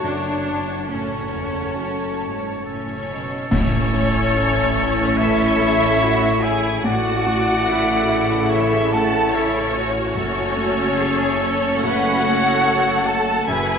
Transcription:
0.00 3.27 F#1 medium
0.00 3.47 F#2 medium
0.00 0.80 F#2 medium
0.00 0.85 A3 medium
0.00 0.90 D4 medium
0.00 0.88 D4 medium
0.00 0.85 C#5 medium
0.00 0.86 C#5 medium
0.00 0.86 F#5 medium
0.00 0.85 A5 medium
0.88 1.30 A2 medium
0.88 2.28 A3 soft
0.88 3.08 C#4 medium
0.88 3.15 C#4 medium
0.88 3.15 A4 medium
0.88 2.61 C#5 medium
0.88 2.61 F#5 medium
0.88 2.60 A5 medium
0.88 2.35 A5 medium
1.33 1.76 E2 medium
1.75 2.20 F#2 medium
1.75 3.47 F#4 soft
1.75 3.47 A4 soft
1.75 3.47 C#5 soft
2.21 2.65 G#2 medium
2.65 3.08 A2 medium
2.65 3.48 C#4 medium
2.65 3.48 A4 medium
2.65 3.48 C#5 medium
3.09 3.52 B2 medium
3.51 6.80 A1 medium
3.51 5.13 A2 medium
3.51 4.72 A2 loud
3.51 6.81 A3 medium
3.51 6.80 C#4 loud
3.51 5.14 C#4 loud
3.51 6.81 E4 medium
3.51 5.19 A4 loud
3.51 5.14 C#5 loud
3.51 5.19 C#5 loud
3.51 concert bass drum medium
3.51 crash medium
3.93 4.60 A3 medium
4.36 5.02 E4 medium
4.77 5.43 C#5 medium
5.17 5.85 E3 medium
5.17 6.43 E4 loud
5.17 5.97 A4 medium
5.17 6.45 C#5 loud
5.17 6.45 E5 loud
5.17 6.43 E5 loud
5.60 6.26 A3 medium
6.01 6.68 E4 medium
6.01 6.43 F#4 medium
6.42 6.85 E4 medium
6.42 6.84 G#4 loud
6.42 7.10 C#5 medium
6.42 6.73 E5 medium
6.42 6.84 G#5 loud
6.42 6.88 G#5 loud
6.84 10.12 A1 medium
6.84 8.47 A2 medium
6.84 10.13 C#3 medium
6.84 10.13 A3 medium
6.84 10.13 E4 medium
6.84 8.51 F#4 loud
6.84 7.66 F#4 medium
6.84 10.13 A4 medium
6.84 8.51 D5 loud
6.84 8.51 F#5 loud
6.84 8.51 F#5 medium
7.26 7.93 A3 medium
7.68 8.34 E4 medium
7.68 8.51 E4 medium
8.09 8.76 E5 medium
8.50 9.17 E3 medium
8.50 9.33 C#4 medium
8.50 8.93 E4 loud
8.50 8.95 C#5 loud
8.50 8.94 E5 loud
8.50 8.93 E5 loud
8.92 9.59 A3 medium
8.92 9.34 A4 loud
8.92 9.37 F#5 medium
8.92 9.33 A5 loud
8.92 9.36 A5 medium
9.34 10.16 C#4 loud
9.34 10.00 E4 medium
9.34 9.76 E4 medium
9.34 9.89 A4 medium
9.34 10.15 C#5 loud
9.34 9.89 C#5 medium
9.75 10.96 F#4 medium
9.75 10.16 C#5 medium
10.16 13.45 F#1 medium
10.16 11.79 F#2 medium
10.16 13.32 A3 medium
10.16 13.45 A3 medium
10.16 13.32 C#4 medium
10.16 13.45 C#4 medium
10.16 11.81 C#4 loud
10.16 11.79 A4 loud
10.16 11.80 C#5 loud
10.57 11.23 A3 medium
10.98 11.66 F#4 medium
10.98 11.41 G#4 medium
11.40 11.83 A4 medium
11.40 12.08 C#5 medium
11.83 12.50 C#3 medium
11.83 13.08 F#4 loud
11.83 12.25 B4 medium
11.83 13.08 C#5 loud
11.83 13.08 F#5 loud
12.26 12.91 A3 medium
12.26 13.49 A4 medium
12.66 13.32 F#4 medium
13.07 13.49 A4 loud
13.07 13.73 C#5 medium
13.07 13.48 F#5 medium
13.07 13.48 A5 loud
13.07 13.50 A5 loud
13.47 13.79 F#1 medium
13.47 13.79 F#2 medium
13.47 13.79 A3 medium
13.47 13.79 C#4 medium
13.47 13.79 G#4 loud
13.47 13.79 B4 medium
13.47 13.79 E5 loud
13.47 13.79 G#5 loud

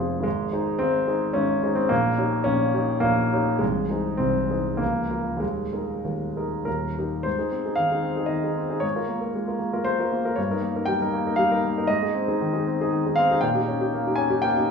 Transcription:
0.00 0.27 F1 soft
0.00 0.27 F2 soft
0.00 0.27 F3 medium
0.00 0.23 G#3 medium
0.00 0.28 F4 soft
0.00 0.28 G#4 soft
0.00 0.28 C5 soft
0.20 0.49 G#1 soft
0.20 0.79 G#3 medium
0.26 0.52 G#2 medium
0.53 0.77 D#4 soft
0.53 0.78 G#4 soft
0.53 0.78 C5 soft
0.79 1.07 G#1 soft
0.79 1.07 G#2 soft
0.79 1.35 C4 medium
1.08 1.32 D#4 soft
1.08 1.32 G#4 soft
1.08 1.33 C5 soft
1.33 1.62 G#1 soft
1.33 1.62 G#2 soft
1.33 1.75 C#4 medium
1.63 1.87 D#4 soft
1.63 1.88 G#4 soft
1.63 1.88 C5 soft
1.75 1.90 C4 medium
1.89 2.17 A#1 soft
1.89 2.17 A#2 medium
1.89 2.45 A#3 medium
2.18 2.43 D#4 soft
2.18 2.44 G4 soft
2.18 2.44 C#5 soft
2.44 2.73 A#1 soft
2.44 2.74 A#2 soft
2.44 3.02 C#4 medium
2.74 3.00 D#4 soft
2.74 3.00 G4 soft
2.74 3.01 C#5 soft
3.00 3.31 A#1 soft
3.00 3.31 A#2 soft
3.00 3.60 A#3 medium
3.32 3.58 D#4 soft
3.32 3.58 G4 soft
3.32 3.59 C#5 soft
3.59 3.89 C1 soft
3.59 3.89 C2 medium
3.59 4.19 G#3 medium
3.90 4.17 D#4 soft
3.90 4.17 G#4 soft
3.90 4.17 C5 soft
4.17 4.49 C1 soft
4.17 4.49 C2 soft
4.17 4.79 C4 medium
4.50 4.77 D#4 soft
4.50 4.77 G#4 soft
4.50 4.78 C5 soft
4.77 5.09 C#1 soft
4.77 5.09 C#2 soft
4.77 5.40 A#3 medium
5.11 5.38 F4 soft
5.11 5.39 A#4 soft
5.37 5.70 D#2 soft
5.37 6.65 G#3 medium
5.42 5.72 D#1 soft
5.72 6.01 D#4 soft
5.72 6.01 G#4 soft
5.72 6.02 A#4 soft
6.05 6.35 D#1 soft
6.05 6.35 D#2 soft
6.36 6.63 D#4 soft
6.36 6.63 G#4 soft
6.36 6.64 A#4 soft
6.65 6.96 D#1 soft
6.65 6.96 D#2 soft
6.65 6.97 A#4 medium
6.98 7.24 D#4 soft
6.98 7.24 G4 soft
6.98 7.24 A#4 soft
7.23 7.38 G#2 soft
7.23 7.78 C5 medium
7.38 7.51 D#4 soft
7.38 7.51 G#4 soft
7.51 7.73 C4 soft
7.66 7.78 D#4 soft
7.66 7.77 G#4 soft
7.76 8.00 D#3 soft
7.76 8.30 F5 medium
7.92 8.04 D#4 soft
7.92 8.04 G#4 soft
8.03 8.25 C4 soft
8.16 8.29 D#4 soft
8.16 8.29 G#4 soft
8.26 8.51 D#3 soft
8.26 8.81 D#5 medium
8.43 8.56 D#4 soft
8.43 8.56 G#4 soft
8.57 8.78 C4 soft
8.70 8.82 D#4 soft
8.70 8.82 G#4 soft
8.80 8.96 G#2 soft
8.80 9.59 C#5 medium
8.96 9.08 F4 soft
8.96 9.08 A#4 soft
9.09 9.29 A#3 soft
9.21 9.33 F4 soft
9.21 9.33 A#4 soft
9.35 9.55 G#3 soft
9.48 9.59 F4 soft
9.48 9.59 A#4 soft
9.59 9.81 A#3 soft
9.73 9.85 F4 soft
9.73 9.85 A#4 soft
9.84 10.07 G#3 soft
9.84 10.36 C5 medium
9.99 10.11 F4 soft
9.99 10.11 A#4 soft
10.12 10.32 A#3 soft
10.25 10.36 F4 soft
10.25 10.36 A#4 medium
10.36 10.50 G2 medium
10.36 10.87 C#5 medium
10.50 10.61 D#4 soft
10.50 10.62 A#4 soft
10.62 10.82 A#3 soft
10.76 10.87 D#4 soft
10.76 10.87 A#4 soft
10.86 11.08 G3 soft
10.86 11.36 G5 medium
11.01 11.12 D#4 soft
11.01 11.12 A#4 soft
11.13 11.33 A#3 soft
11.27 11.37 D#4 soft
11.27 11.37 A#4 soft
11.36 11.58 G3 medium
11.36 11.87 F5 medium
11.51 11.62 D#4 soft
11.51 11.62 A#4 soft
11.64 11.84 A#3 soft
11.78 11.88 D#4 medium
11.78 11.88 A#4 soft
11.87 12.01 G#2 medium
11.87 12.64 D#5 medium
12.03 12.13 D#4 soft
12.03 12.13 G#4 soft
12.15 12.34 C4 soft
12.28 12.39 D#4 soft
12.28 12.39 G#4 soft
12.41 12.60 D#3 medium
12.53 12.64 D#4 soft
12.53 12.64 G#4 soft
12.67 12.86 C4 soft
12.81 12.91 D#4 soft
12.81 12.91 G#4 medium
12.93 13.12 D#3 soft
13.05 13.16 D#4 soft
13.05 13.16 G#4 soft
13.16 13.38 C4 medium
13.16 13.41 F5 medium
13.30 13.41 D#4 medium
13.30 13.41 G#4 medium
13.41 13.54 A#2 medium
13.41 14.17 G5 medium
13.55 13.66 D#4 soft
13.55 13.66 G4 soft
13.68 13.88 C#4 soft
13.81 13.92 D#4 soft
13.81 13.92 G4 soft
13.94 14.13 A#3 soft
14.07 14.17 D#4 soft
14.07 14.18 G4 soft
14.16 14.38 C#4 soft
14.16 14.42 G#5 medium
14.30 14.42 D#4 soft
14.30 14.42 G4 medium
14.42 14.64 A#3 soft
14.42 14.71 G5 medium
14.57 14.68 D#4 soft
14.57 14.68 G4 soft

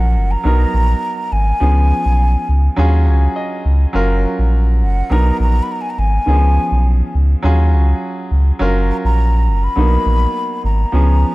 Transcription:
0.00 0.17 A#1 medium
0.00 0.13 F3 medium
0.00 0.12 F#3 medium
0.00 0.12 C#4 medium
0.00 0.13 A#4 loud
0.00 0.33 F#5 loud
0.16 0.36 F#1 medium
0.31 1.34 A#5 loud
0.44 0.65 B1 loud
0.44 1.28 F#3 medium
0.44 1.29 B3 medium
0.44 1.29 D#4 medium
0.44 1.30 A#4 medium
0.74 0.95 A#1 medium
1.32 1.53 G#1 medium
1.32 3.07 G#5 loud
1.60 1.93 C#2 loud
1.60 2.45 F3 medium
1.60 2.45 B3 medium
1.60 2.46 C#4 medium
1.60 2.46 G#4 medium
2.05 2.36 B1 medium
2.49 2.69 C#2 medium
2.76 3.09 D#2 loud
2.76 3.61 F#3 medium
2.76 3.62 C#4 medium
2.76 3.62 F4 medium
2.76 3.63 G#4 loud
3.07 3.28 C#2 medium
3.07 3.34 G#5 medium
3.36 3.90 D#5 medium
3.65 3.86 C#2 medium
3.93 4.26 F#1 loud
3.93 4.78 F#3 medium
3.93 4.78 C#4 medium
3.93 4.79 F4 medium
3.93 4.79 A#4 loud
4.39 4.83 A#1 medium
4.82 5.02 F#1 medium
4.82 5.13 F#5 medium
5.10 5.31 B1 loud
5.10 5.95 F#3 medium
5.10 5.95 B3 medium
5.10 5.95 D#4 medium
5.10 5.96 A#4 medium
5.10 5.40 A#5 loud
5.40 5.60 A#1 medium
5.40 5.64 A#5 loud
5.63 5.73 B5 medium
5.72 5.83 A#5 medium
5.81 5.92 G#5 medium
5.90 6.00 A#5 medium
5.98 6.19 G#1 medium
5.98 7.15 G#5 loud
6.26 6.59 C#2 loud
6.26 6.33 D#3 medium
6.26 7.11 B3 medium
6.26 7.12 C#4 medium
6.26 7.12 G#4 medium
6.32 7.14 F3 medium
6.72 7.02 B1 medium
7.15 7.35 C#2 medium
7.43 7.74 D#2 loud
7.43 8.27 F#3 medium
7.43 8.28 C#4 medium
7.43 8.28 F4 medium
7.43 8.29 G#4 loud
7.73 7.94 C#2 medium
8.31 8.52 C#2 medium
8.59 8.92 F#1 loud
8.59 9.44 F#3 medium
8.59 9.44 C#4 medium
8.59 9.45 F4 medium
8.59 9.45 A#4 loud
8.90 8.96 A#5 loud
9.04 9.49 A#1 medium
9.04 9.65 A#5 loud
9.48 9.68 F#1 medium
9.64 10.65 B5 loud
9.76 9.97 B1 loud
9.76 10.61 F#3 medium
9.76 10.62 A#3 medium
9.76 10.61 B3 medium
9.76 10.61 D#4 medium
10.06 10.27 A#1 medium
10.64 10.85 G#1 medium
10.64 11.35 A#5 loud
10.92 11.25 C#2 loud
10.92 11.35 F3 medium
10.92 11.35 B3 medium
10.92 11.35 C#4 medium
10.92 11.35 G#4 medium

